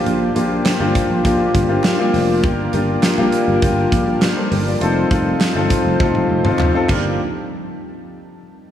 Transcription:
Already playing: grand piano A#3 D4 F4 G4, ambient pad A#3 G4 D5, analog polysynth F4 G4 C5
0.06 fretless electric bass A#1, closed hi-hat
0.35 fretless electric bass A#1, grand piano A#3 D4 F4 G4, closed hi-hat
0.66 snare, clap, closed hi-hat
0.79 fretless electric bass G1, grand piano A#3 D4 F4 G4
0.95 kick, closed hi-hat
1.10 fretless electric bass A#1
1.24 fretless electric bass A#1, grand piano A#3 D4 F4 G4, kick, closed hi-hat
1.55 fretless electric bass G1, kick, closed hi-hat
1.68 grand piano A#3 D4 F4 G4
1.84 snare, clap, closed hi-hat
1.99 grand piano A#3 D4 F4 G4
2.14 fretless electric bass F1, open hi-hat
2.43 fretless electric bass G1, ambient pad G3 F4 A#4 A5, grand piano A#3 D4 F4 G4, analog polysynth F4 G4 A#4, kick, closed hi-hat
2.73 fretless electric bass G1, grand piano A#3 D4 F4 G4, closed hi-hat
3.03 snare, clap, closed hi-hat
3.17 fretless electric bass A#1, grand piano A#3 D4 F4 G4
3.32 closed hi-hat
3.48 fretless electric bass G1
3.62 fretless electric bass G1, grand piano A#3 D4 F4 G4, kick, closed hi-hat
3.92 fretless electric bass A#1, kick, closed hi-hat
4.07 grand piano G4
4.22 grand piano G4 A#4, snare, clap, closed hi-hat
4.37 grand piano A4 C5
4.51 fretless electric bass G1, grand piano G4 A#4, open hi-hat
4.67 grand piano A#4 D5
4.81 fretless electric bass F1, ambient pad F3 C4 D#4 G4, grand piano C4 D#4 F4 A4, analog polysynth F4 A4 C5, closed hi-hat
5.10 fretless electric bass F1, grand piano C4 D#4 F4 A4, kick, closed hi-hat
5.41 snare, clap, closed hi-hat, tambourine
5.55 fretless electric bass G1, grand piano C4 D#4 F4 A4
5.70 kick, closed hi-hat
5.85 fretless electric bass F1
6.00 fretless electric bass F1, grand piano C4 D#4 F4 A4, kick, high tom
6.15 high tom
6.29 fretless electric bass F1
6.44 grand piano C4 D#4 F4 A4, mid tom
6.59 clap, mid tom
6.74 grand piano C4 D#4 F4 A4
6.89 fretless electric bass G1, analog polysynth G3 F4 A#4, grand piano A#3 D4 F4 G4, kick, clap, crash

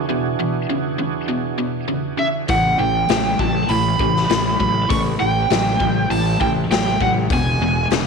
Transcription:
0.09 overdriven electric guitar E2 B2, tonewheel organ E3 D4 F#4 G#4
0.40 overdriven electric guitar E2 B2
0.69 overdriven electric guitar E2 C#3
0.98 overdriven electric guitar E2 C#3
1.28 overdriven electric guitar E2 B2
1.58 overdriven electric guitar E2 B2
1.88 overdriven electric guitar E2 C#3
2.18 overdriven electric guitar E2 C#3, lead electric guitar E5
2.48 fingered electric bass A1, overdriven electric guitar A2 E3, tonewheel organ C#4 G4 B4, lead electric guitar F#5, kick, open hi-hat
2.79 fingered electric bass A1, overdriven electric guitar A2 E3, lead electric guitar G5
3.09 fingered electric bass A1, overdriven electric guitar A2 F#3, snare, open hi-hat
3.39 fingered electric bass A1, overdriven electric guitar A2 F#3, lead electric guitar A5, kick
3.69 fingered electric bass A1, overdriven electric guitar A2 E3, lead electric guitar B5, open hi-hat
3.99 fingered electric bass A1, overdriven electric guitar A2 E3, kick
4.16 snare
4.30 fingered electric bass A1, overdriven electric guitar A2 F#3, snare, open hi-hat
4.60 fingered electric bass A1, overdriven electric guitar A2 F#3, lead electric guitar B5, kick
4.90 fingered electric bass A1, overdriven electric guitar A2 E3, tonewheel organ C#4 G4 B4, lead electric guitar C#6, kick, open hi-hat
5.19 fingered electric bass A1, overdriven electric guitar A2 E3, lead electric guitar G5
5.50 fingered electric bass A1, overdriven electric guitar A2 F#3, snare, open hi-hat
5.80 fingered electric bass A1, overdriven electric guitar A2 F#3, kick
6.10 fingered electric bass A1, overdriven electric guitar A2 E3, lead electric guitar A5, open hi-hat
6.40 fingered electric bass A1, overdriven electric guitar A2 E3, lead electric guitar G5, kick
6.70 fingered electric bass A1, overdriven electric guitar A2 F#3, lead electric guitar G5, snare, open hi-hat
7.00 fingered electric bass A1, overdriven electric guitar A2 F#3, lead electric guitar F#5, kick
7.29 fingered electric bass E1, overdriven electric guitar E2, tonewheel organ D4 F#4 G#4, kick, open hi-hat
7.33 overdriven electric guitar B2, lead electric guitar G#5
7.60 fingered electric bass E1, overdriven electric guitar E2 B2
7.90 fingered electric bass E1, overdriven electric guitar E2 C#3, snare, open hi-hat

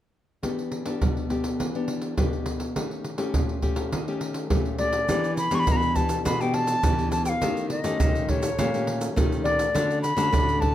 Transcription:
0.43 nylon-string guitar E3 B3 D4 G4, pandeiro, surdo
0.59 pandeiro
0.72 pandeiro
0.85 nylon-string guitar B3 D4 G4, pandeiro
1.01 nylon-string guitar B2, pandeiro, surdo
1.17 pandeiro
1.30 nylon-string guitar B3 D4 G4, pandeiro
1.44 pandeiro
1.59 nylon-string guitar E3, pandeiro, surdo
1.75 nylon-string guitar B3 D4 G4, pandeiro
1.88 pandeiro
2.02 pandeiro
2.17 nylon-string guitar B2 B3 D4 G4, pandeiro, surdo
2.33 pandeiro
2.46 pandeiro
2.60 pandeiro
2.75 nylon-string guitar D#3 A3 C#4 G4, pandeiro, surdo
2.91 pandeiro
3.04 pandeiro
3.18 nylon-string guitar A3 C#4 G4, pandeiro
3.34 nylon-string guitar A#2, pandeiro, surdo
3.49 pandeiro
3.62 nylon-string guitar A3 C#4 G4, pandeiro, surdo
3.76 pandeiro
3.92 nylon-string guitar D#3, pandeiro, surdo
4.08 nylon-string guitar A3 C#4 G4, pandeiro
4.21 pandeiro
4.34 pandeiro
4.50 nylon-string guitar A#2 A3 C#4 G4, pandeiro, surdo
4.65 pandeiro
4.79 nylon-string guitar A3 C#4 G4, flute D5, pandeiro
4.93 pandeiro
5.09 nylon-string guitar E3 B3 D4 G4, pandeiro, shaker, surdo
5.24 pandeiro, shaker
5.37 flute B5, pandeiro, shaker
5.51 nylon-string guitar E3 B3 D4 G4, flute C#6, pandeiro, shaker
5.60 flute B5
5.67 nylon-string guitar B2 E3, pandeiro, shaker, surdo
5.72 flute A#5
5.77 flute B5
5.82 pandeiro, shaker
5.96 nylon-string guitar B3 D4 G4, flute A5, pandeiro, shaker, surdo
6.09 pandeiro, shaker
6.25 nylon-string guitar B2 E3, flute B5, pandeiro, shaker, surdo
6.41 nylon-string guitar B3 D4 G4, flute G5, pandeiro, shaker
6.54 flute A5, pandeiro
6.67 pandeiro, shaker
6.83 nylon-string guitar B2 E3 B3 D4 G4, pandeiro, shaker, surdo
6.99 pandeiro, shaker
7.12 flute A5, pandeiro, shaker
7.25 flute F5 G5, pandeiro, shaker
7.42 nylon-string guitar D#3 A3 C#4 G4, pandeiro, shaker, surdo
7.57 pandeiro, shaker
7.70 flute D#5, pandeiro
7.84 nylon-string guitar D#3 A3 C#4 G4, pandeiro, shaker
8.00 nylon-string guitar A#2 D#3, pandeiro, shaker, surdo
8.15 pandeiro, shaker
8.28 nylon-string guitar A3 C#4 G4, flute C#5, pandeiro, surdo
8.43 pandeiro, shaker
8.59 nylon-string guitar A#2 D#3 A3 C#4 G4, pandeiro, shaker, surdo
8.74 nylon-string guitar A3 C#4 G4, pandeiro, shaker
8.87 pandeiro
9.01 pandeiro, shaker
9.16 nylon-string guitar A#2 D#3 A3 C#4 G4, pandeiro, shaker, surdo
9.32 pandeiro, shaker
9.44 flute D5, pandeiro
9.59 pandeiro, shaker
9.74 nylon-string guitar D3 A3 C#4 F#4, pandeiro, shaker, surdo
9.90 pandeiro, shaker
10.02 flute B5, pandeiro, shaker
10.17 nylon-string guitar D3 A3 C#4 F#4, pandeiro, shaker
10.32 nylon-string guitar A2 D3, pandeiro, shaker, surdo
10.49 pandeiro, shaker
10.61 nylon-string guitar A3 C#4 F#4, flute A5, pandeiro, surdo

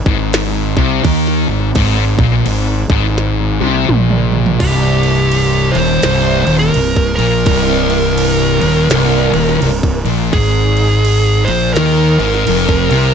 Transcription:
0.06 fingered electric bass G#1, distorted electric guitar G#2, kick
0.33 snare, crash
0.77 fingered electric bass C2, distorted electric guitar C3, kick
1.04 fingered electric bass D#2, distorted electric guitar D#3, kick, crash
1.27 snare
1.48 fingered electric bass G#1, distorted electric guitar G#2
1.75 fingered electric bass G#1, distorted electric guitar G#2, kick, crash
2.19 fingered electric bass A#1, distorted electric guitar A#2, kick
2.46 fingered electric bass G#1, distorted electric guitar G#2, crash
2.90 fingered electric bass G#1, distorted electric guitar G#2, kick
3.18 snare
3.61 fingered electric bass C2, distorted electric guitar C3, high tom
3.89 fingered electric bass A#1, distorted electric guitar A#2, mid tom
4.10 mid tom
4.32 floor tom
4.46 floor tom
4.60 fingered electric bass C1, distorted electric guitar C2, lead electric guitar G4, kick, crash
5.03 crash
5.31 crash
5.71 fingered electric bass D#1, lead electric guitar C5, crash
5.76 distorted electric guitar D#2
6.02 fingered electric bass C1, distorted electric guitar C2, snare, crash
6.46 fingered electric bass D#1, distorted electric guitar D#2, crash
6.59 lead electric guitar A#4
6.74 fingered electric bass C1, distorted electric guitar C2, crash
6.96 kick
7.16 fingered electric bass A#1, distorted electric guitar A#2, lead electric guitar A#4, crash
7.46 fingered electric bass C1, distorted electric guitar C2, kick, crash
7.90 crash
8.18 crash
8.61 fingered electric bass D#1, distorted electric guitar D#2, crash
8.90 fingered electric bass C1, distorted electric guitar C2, snare, crash
9.33 fingered electric bass D#1, distorted electric guitar D#2, crash
9.49 snare
9.62 fingered electric bass C1, distorted electric guitar C2, crash
9.83 kick
10.05 fingered electric bass A#1, distorted electric guitar A#2, crash
10.33 fingered electric bass G#1, distorted electric guitar G#2, lead electric guitar G#4, kick, crash
10.77 crash
11.05 crash
11.45 fingered electric bass A#1, distorted electric guitar A#2, lead electric guitar C5, crash
11.73 fingered electric bass D#2, distorted electric guitar D#3, lead electric guitar A#4, snare, crash
12.19 fingered electric bass G#1, distorted electric guitar G#2, crash
12.34 snare
12.47 fingered electric bass F1, distorted electric guitar F2, crash
12.69 kick
12.90 fingered electric bass C2, distorted electric guitar C3, crash

